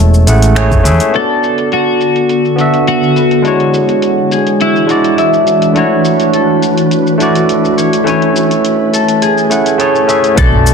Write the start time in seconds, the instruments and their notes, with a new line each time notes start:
Already playing: tine electric piano G#3 A3 C#4 E4 C#5, clean electric guitar A5
0.00 fingered electric bass E1
0.14 shaker
0.27 fingered electric bass A1, tine electric piano A3 C#4 E4 G#4 F#5, closed hi-hat, shaker
0.42 closed hi-hat, shaker
0.55 tine electric piano A3 C#4 E4 G#4 C#5, finger snap, closed hi-hat, shaker
0.71 fingered electric bass E1, kick, mid tom, shaker
0.84 fingered electric bass E2, tine electric piano A3 C#4 E4 G#4 E5, closed hi-hat, shaker
1.00 closed hi-hat, shaker
1.11 ambient pad D3 B3 A4, tine electric piano B3 D4 F#4, harp B4, closed hi-hat, shaker
1.16 tine electric piano A4 D5, clean electric guitar A4
1.43 shaker
1.58 closed hi-hat, shaker
1.72 clean electric guitar F#4, harp A4, closed hi-hat, shaker
2.01 closed hi-hat, shaker
2.16 closed hi-hat, shaker
2.29 closed hi-hat, shaker
2.45 shaker
2.56 tine electric piano B3 D4 F#4, harp F#4, closed hi-hat, shaker
2.60 tine electric piano A4 E5
2.74 closed hi-hat, shaker
2.87 clean electric guitar F#4, closed hi-hat, shaker
3.03 shaker
3.16 harp B4, closed hi-hat, shaker
3.31 closed hi-hat, shaker
3.42 ambient pad E3 G#3 D4 F#4 B4, tine electric piano G#3 D4 E4, closed hi-hat, shaker
3.46 tine electric piano F#4 C#5
3.60 closed hi-hat
3.74 shaker
3.89 closed hi-hat, shaker
4.02 closed hi-hat, shaker
4.31 harp G#4, closed hi-hat, shaker
4.47 closed hi-hat, shaker
4.61 clean electric guitar E4, harp F#4, closed hi-hat, shaker
4.76 shaker
4.86 tine electric piano G#3 D4 E4, closed hi-hat, shaker
4.90 tine electric piano F#4 D5
5.04 closed hi-hat, shaker
5.18 harp E5, closed hi-hat, shaker
5.33 shaker
5.47 closed hi-hat, shaker
5.62 closed hi-hat, shaker
5.73 tine electric piano A3 D4 E4 F#4, harp C#5, closed hi-hat, shaker
5.79 tine electric piano C#5
6.05 shaker
6.20 closed hi-hat, shaker
6.33 harp A4, closed hi-hat, shaker
6.62 closed hi-hat, shaker
6.77 closed hi-hat, shaker
6.91 closed hi-hat, shaker
7.07 shaker
7.18 tine electric piano A3 D4 E4, harp F#4, closed hi-hat, shaker
7.22 tine electric piano F#4 D5
7.35 closed hi-hat, shaker
7.49 closed hi-hat, shaker
7.65 shaker
7.77 harp C#5, closed hi-hat, shaker
7.93 closed hi-hat, shaker
8.04 tine electric piano A3 C#4 E4, ambient pad A3 G#5, closed hi-hat, shaker
8.08 tine electric piano C#5 G#5
8.22 closed hi-hat
8.36 shaker
8.51 closed hi-hat, shaker
8.65 closed hi-hat, shaker
8.94 harp A4, closed hi-hat, shaker
9.08 closed hi-hat, shaker
9.22 harp G#4, closed hi-hat, shaker
9.38 shaker
9.50 tine electric piano A3 C#4 E4 G#4 F#5, closed hi-hat, shaker
9.66 closed hi-hat, shaker
9.78 tine electric piano A3 C#4 E4 G#4 C#5, harp A4, closed hi-hat, shaker
9.95 shaker
10.07 tine electric piano A3 C#4 E4 G#4 E5, harp G#5, closed hi-hat, shaker
10.24 closed hi-hat, shaker
10.35 fingered electric bass B1, ambient pad A3 D4 B4, tine electric piano B3 D4 F#4, clean electric guitar A4, harp B4, kick, closed hi-hat, shaker
10.40 tine electric piano D5
10.53 mid tom
10.67 shaker